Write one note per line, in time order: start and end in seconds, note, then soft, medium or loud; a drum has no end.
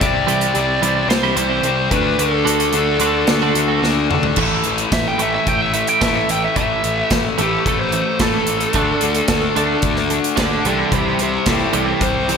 0.01 0.25 C2 medium
0.01 0.53 C3 medium
0.01 0.54 G3 medium
0.01 0.54 C4 medium
0.01 1.06 D5 medium
0.01 kick loud
0.01 closed hi-hat medium
0.14 muted clean electric guitar stroke soft
0.27 0.52 C2 medium
0.27 0.45 E3 medium
0.27 0.46 G3 medium
0.27 0.46 C4 medium
0.27 0.46 E4 medium
0.27 closed hi-hat medium
0.41 closed hi-hat medium
0.54 0.79 C2 medium
0.54 0.82 C3 medium
0.54 0.82 G3 medium
0.54 0.82 C4 medium
0.54 muted clean electric guitar stroke soft
0.54 closed hi-hat medium
0.82 1.06 C2 medium
0.82 1.07 C3 medium
0.82 1.00 E3 medium
0.82 1.00 G3 medium
0.82 1.08 G3 medium
0.82 1.01 C4 medium
0.82 1.09 C4 medium
0.82 1.01 E4 medium
0.82 closed hi-hat medium
1.07 1.32 C2 medium
1.07 1.63 C3 medium
1.07 1.64 G3 medium
1.07 1.64 C4 medium
1.07 1.36 C5 medium
1.07 muted clean electric guitar stroke soft
1.07 snare loud
1.07 closed hi-hat medium
1.23 1.42 E3 medium
1.23 1.42 G3 medium
1.23 1.42 C4 medium
1.23 1.41 E4 medium
1.36 1.60 C2 medium
1.36 1.91 C5 medium
1.36 closed hi-hat medium
1.49 1.69 E3 medium
1.49 1.68 G3 medium
1.49 1.68 C4 medium
1.49 1.68 E4 medium
1.63 1.87 C2 medium
1.63 1.91 C3 medium
1.63 1.91 G3 medium
1.63 1.91 C4 medium
1.63 closed hi-hat medium
1.77 muted clean electric guitar stroke soft
1.91 2.15 D2 medium
1.91 2.18 D3 medium
1.91 2.19 A3 loud
1.91 2.18 D4 loud
1.91 2.20 B4 medium
1.91 kick medium
1.91 closed hi-hat medium
2.18 2.43 D2 medium
2.18 2.73 D3 medium
2.18 2.73 A3 loud
2.18 2.72 D4 loud
2.18 3.80 A4 medium
2.18 closed hi-hat medium
2.31 muted clean electric guitar stroke medium
2.45 2.70 D2 medium
2.45 2.64 D3 medium
2.45 2.64 A3 medium
2.45 2.64 D4 medium
2.45 2.64 F#4 medium
2.45 closed hi-hat medium
2.60 closed hi-hat medium
2.73 2.97 D2 medium
2.73 3.00 D3 medium
2.73 3.00 A3 medium
2.73 3.00 D4 medium
2.73 muted clean electric guitar stroke soft
2.73 closed hi-hat medium
2.99 3.24 D2 medium
2.99 3.19 D3 medium
2.99 3.27 D3 medium
2.99 3.19 A3 medium
2.99 3.28 A3 medium
2.99 3.19 D4 medium
2.99 3.28 D4 medium
2.99 3.19 F#4 medium
2.99 closed hi-hat medium
3.27 3.52 D2 medium
3.27 3.81 D3 medium
3.27 3.81 A3 medium
3.27 3.82 D4 loud
3.27 muted clean electric guitar stroke soft
3.27 snare loud
3.27 closed hi-hat medium
3.42 3.60 D3 medium
3.42 3.60 A3 medium
3.42 3.60 D4 medium
3.42 3.60 F#4 loud
3.55 3.79 D2 medium
3.55 closed hi-hat medium
3.68 3.87 D3 medium
3.68 3.87 A3 medium
3.68 3.87 D4 medium
3.68 3.87 F#4 medium
3.82 4.07 D2 medium
3.82 4.09 D3 medium
3.82 4.09 A3 medium
3.82 4.10 D4 medium
3.82 snare medium
3.95 muted clean electric guitar stroke medium
4.10 4.34 D3 medium
4.10 4.36 D3 medium
4.10 4.36 A3 medium
4.10 4.37 D4 medium
4.10 mid tom medium
4.23 floor tom medium
4.36 4.55 A1 medium
4.36 5.21 A2 medium
4.36 4.63 A2 medium
4.36 4.63 E3 medium
4.36 5.20 E3 medium
4.36 4.63 A3 medium
4.36 5.19 A3 medium
4.36 kick loud
4.36 crash medium
4.64 4.83 A1 medium
4.64 4.89 A2 medium
4.64 4.90 E3 medium
4.64 closed hi-hat medium
4.78 closed hi-hat medium
4.92 5.10 A1 medium
4.92 5.17 A2 medium
4.92 5.17 E3 medium
4.92 5.06 E5 medium
4.92 kick loud
4.92 snare loud
4.92 closed hi-hat medium
5.08 5.20 G5 medium
5.18 5.37 A1 medium
5.18 5.45 A2 medium
5.18 6.01 A2 medium
5.18 5.45 E3 medium
5.18 6.01 E3 medium
5.18 6.05 A3 medium
5.18 5.45 A3 loud
5.18 5.33 E5 medium
5.18 closed hi-hat medium
5.35 5.48 E5 medium
5.47 5.83 A1 medium
5.47 5.72 A2 medium
5.47 5.72 E3 medium
5.47 5.61 G5 medium
5.47 kick loud
5.47 closed hi-hat medium
5.61 5.73 E5 medium
5.74 5.99 A2 medium
5.74 5.99 E3 medium
5.74 5.88 E5 medium
5.74 closed hi-hat medium
5.87 6.01 G5 medium
5.87 closed hi-hat medium
6.01 6.19 A1 medium
6.01 6.27 A2 medium
6.01 6.54 A2 medium
6.01 6.27 E3 medium
6.01 6.55 E3 medium
6.01 6.27 A3 medium
6.01 6.15 E5 medium
6.01 kick loud
6.01 snare loud
6.01 closed hi-hat medium
6.06 6.57 A3 medium
6.16 6.29 E5 medium
6.28 6.46 A1 medium
6.28 6.54 A2 medium
6.28 6.54 E3 medium
6.28 6.44 G5 medium
6.28 closed hi-hat medium
6.45 6.57 E5 medium
6.55 6.74 A1 medium
6.55 7.36 A2 medium
6.55 6.81 A2 medium
6.55 7.37 E3 medium
6.55 6.81 E3 loud
6.55 6.82 A3 medium
6.55 7.39 A3 medium
6.55 7.10 E5 medium
6.55 kick loud
6.55 closed hi-hat medium
6.82 7.02 A1 medium
6.82 7.07 A2 medium
6.82 7.08 E3 medium
6.82 closed hi-hat medium
7.10 7.29 A1 medium
7.10 7.36 A2 medium
7.10 7.36 E3 medium
7.10 kick loud
7.10 snare medium
7.10 closed hi-hat medium
7.38 7.57 A1 medium
7.38 7.64 A2 medium
7.38 7.64 E3 loud
7.38 8.19 E3 medium
7.38 7.64 A3 loud
7.38 8.19 A3 medium
7.38 7.66 G4 medium
7.38 closed hi-hat medium
7.42 8.20 A2 medium
7.65 8.01 A1 medium
7.65 7.90 A2 medium
7.65 7.90 E3 medium
7.65 7.80 A4 medium
7.65 kick loud
7.65 closed hi-hat medium
7.79 8.19 C5 medium
7.92 8.17 A2 medium
7.92 8.18 E3 medium
7.92 closed hi-hat medium
8.19 8.38 A1 medium
8.19 8.46 A2 medium
8.19 8.74 A2 medium
8.19 8.46 E3 medium
8.19 8.74 E3 medium
8.19 8.46 A3 medium
8.19 9.81 A4 medium
8.19 kick loud
8.19 snare loud
8.19 closed hi-hat medium
8.23 8.75 A3 medium
8.47 8.65 A1 medium
8.47 8.73 A2 medium
8.47 8.73 E3 medium
8.47 closed hi-hat medium
8.60 closed hi-hat medium
8.73 8.92 D2 medium
8.73 9.00 D3 medium
8.73 9.56 D3 medium
8.73 9.01 A3 medium
8.73 9.01 D4 medium
8.73 kick loud
8.73 closed hi-hat medium
8.78 9.56 A3 loud
8.78 9.55 D4 loud
9.01 9.20 D2 medium
9.01 9.26 D3 medium
9.01 9.27 A3 medium
9.01 closed hi-hat medium
9.15 closed hi-hat medium
9.28 9.47 D2 medium
9.28 9.53 D3 medium
9.28 9.54 A3 medium
9.28 kick loud
9.28 snare loud
9.28 closed hi-hat medium
9.56 9.74 D2 medium
9.56 9.82 D3 medium
9.56 10.35 D3 medium
9.56 9.82 A3 medium
9.56 10.37 A3 medium
9.56 10.37 D4 medium
9.56 9.82 D4 loud
9.56 closed hi-hat medium
9.82 10.18 D2 medium
9.82 10.08 D3 medium
9.82 10.08 A3 medium
9.82 kick loud
9.82 closed hi-hat medium
9.96 snare soft
10.10 10.35 D3 medium
10.10 10.35 A3 medium
10.10 closed hi-hat medium
10.24 closed hi-hat medium
10.36 10.55 D2 medium
10.36 10.63 D3 medium
10.36 10.63 A3 medium
10.36 10.64 A3 medium
10.36 10.63 D4 loud
10.36 10.64 D4 medium
10.36 10.66 A4 medium
10.36 10.65 D5 medium
10.36 kick loud
10.36 snare loud
10.36 closed hi-hat medium
10.65 10.83 C2 medium
10.65 10.90 C3 medium
10.65 11.45 C3 medium
10.65 10.91 E3 loud
10.65 10.91 G3 loud
10.65 11.47 G3 medium
10.65 11.48 C4 medium
10.65 10.92 A4 medium
10.65 10.93 D5 medium
10.65 closed hi-hat medium
10.91 11.10 C2 medium
10.91 11.18 C3 medium
10.91 11.18 E3 medium
10.91 11.18 G3 medium
10.91 11.19 G4 medium
10.91 kick loud
10.91 closed hi-hat medium
10.96 11.21 C5 medium
11.19 11.37 C2 medium
11.19 11.44 C3 medium
11.19 11.44 E3 medium
11.19 11.47 G4 medium
11.19 closed hi-hat medium
11.23 11.48 C5 medium
11.46 11.65 C2 medium
11.46 12.27 C3 medium
11.46 11.72 C3 medium
11.46 11.72 E3 medium
11.46 12.28 G3 medium
11.46 12.30 C4 medium
11.46 11.73 E4 medium
11.46 11.74 A4 medium
11.46 kick loud
11.46 snare loud
11.46 closed hi-hat medium
11.73 11.92 C2 medium
11.73 11.99 C3 medium
11.73 12.00 E3 medium
11.73 12.00 G3 loud
11.73 closed hi-hat medium
11.77 12.01 E4 medium
11.77 12.03 A4 medium
12.01 12.37 C2 medium
12.01 12.26 C3 medium
12.01 12.26 E3 medium
12.01 12.37 C5 medium
12.01 kick loud
12.01 closed hi-hat medium
12.28 12.37 C3 medium
12.28 12.37 E3 medium
12.28 12.37 G3 medium
12.28 12.37 C4 medium
12.28 closed hi-hat medium
12.32 12.37 C3 medium